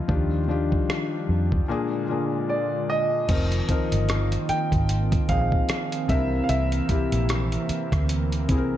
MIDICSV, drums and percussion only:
0, 0, Header, 1, 2, 480
1, 0, Start_track
1, 0, Tempo, 800000
1, 54, Time_signature, 4, 2, 24, 8
1, 5263, End_track
2, 0, Start_track
2, 0, Title_t, "Drums"
2, 53, Note_on_c, 9, 36, 116
2, 113, Note_off_c, 9, 36, 0
2, 433, Note_on_c, 9, 36, 92
2, 493, Note_off_c, 9, 36, 0
2, 539, Note_on_c, 9, 37, 116
2, 599, Note_off_c, 9, 37, 0
2, 912, Note_on_c, 9, 36, 77
2, 972, Note_off_c, 9, 36, 0
2, 1972, Note_on_c, 9, 42, 69
2, 1973, Note_on_c, 9, 36, 110
2, 1973, Note_on_c, 9, 49, 87
2, 2032, Note_off_c, 9, 42, 0
2, 2033, Note_off_c, 9, 36, 0
2, 2033, Note_off_c, 9, 49, 0
2, 2111, Note_on_c, 9, 42, 51
2, 2171, Note_off_c, 9, 42, 0
2, 2212, Note_on_c, 9, 42, 68
2, 2213, Note_on_c, 9, 36, 83
2, 2272, Note_off_c, 9, 42, 0
2, 2273, Note_off_c, 9, 36, 0
2, 2353, Note_on_c, 9, 42, 65
2, 2413, Note_off_c, 9, 42, 0
2, 2452, Note_on_c, 9, 42, 56
2, 2458, Note_on_c, 9, 37, 117
2, 2512, Note_off_c, 9, 42, 0
2, 2518, Note_off_c, 9, 37, 0
2, 2592, Note_on_c, 9, 42, 51
2, 2652, Note_off_c, 9, 42, 0
2, 2694, Note_on_c, 9, 42, 57
2, 2754, Note_off_c, 9, 42, 0
2, 2832, Note_on_c, 9, 36, 80
2, 2834, Note_on_c, 9, 42, 47
2, 2892, Note_off_c, 9, 36, 0
2, 2894, Note_off_c, 9, 42, 0
2, 2935, Note_on_c, 9, 42, 87
2, 2995, Note_off_c, 9, 42, 0
2, 3073, Note_on_c, 9, 36, 89
2, 3073, Note_on_c, 9, 42, 53
2, 3133, Note_off_c, 9, 36, 0
2, 3133, Note_off_c, 9, 42, 0
2, 3173, Note_on_c, 9, 36, 85
2, 3173, Note_on_c, 9, 42, 68
2, 3233, Note_off_c, 9, 36, 0
2, 3233, Note_off_c, 9, 42, 0
2, 3313, Note_on_c, 9, 36, 82
2, 3373, Note_off_c, 9, 36, 0
2, 3412, Note_on_c, 9, 42, 65
2, 3418, Note_on_c, 9, 37, 111
2, 3472, Note_off_c, 9, 42, 0
2, 3478, Note_off_c, 9, 37, 0
2, 3554, Note_on_c, 9, 42, 58
2, 3614, Note_off_c, 9, 42, 0
2, 3654, Note_on_c, 9, 36, 107
2, 3656, Note_on_c, 9, 42, 64
2, 3714, Note_off_c, 9, 36, 0
2, 3716, Note_off_c, 9, 42, 0
2, 3894, Note_on_c, 9, 42, 70
2, 3954, Note_off_c, 9, 42, 0
2, 4033, Note_on_c, 9, 42, 49
2, 4093, Note_off_c, 9, 42, 0
2, 4134, Note_on_c, 9, 36, 86
2, 4134, Note_on_c, 9, 42, 67
2, 4194, Note_off_c, 9, 36, 0
2, 4194, Note_off_c, 9, 42, 0
2, 4274, Note_on_c, 9, 42, 68
2, 4334, Note_off_c, 9, 42, 0
2, 4374, Note_on_c, 9, 42, 57
2, 4380, Note_on_c, 9, 37, 115
2, 4434, Note_off_c, 9, 42, 0
2, 4440, Note_off_c, 9, 37, 0
2, 4513, Note_on_c, 9, 42, 48
2, 4573, Note_off_c, 9, 42, 0
2, 4616, Note_on_c, 9, 42, 60
2, 4676, Note_off_c, 9, 42, 0
2, 4753, Note_on_c, 9, 36, 85
2, 4755, Note_on_c, 9, 42, 45
2, 4757, Note_on_c, 9, 37, 60
2, 4813, Note_off_c, 9, 36, 0
2, 4815, Note_off_c, 9, 42, 0
2, 4817, Note_off_c, 9, 37, 0
2, 4855, Note_on_c, 9, 42, 86
2, 4915, Note_off_c, 9, 42, 0
2, 4994, Note_on_c, 9, 42, 50
2, 5054, Note_off_c, 9, 42, 0
2, 5093, Note_on_c, 9, 42, 73
2, 5094, Note_on_c, 9, 36, 84
2, 5153, Note_off_c, 9, 42, 0
2, 5154, Note_off_c, 9, 36, 0
2, 5263, End_track
0, 0, End_of_file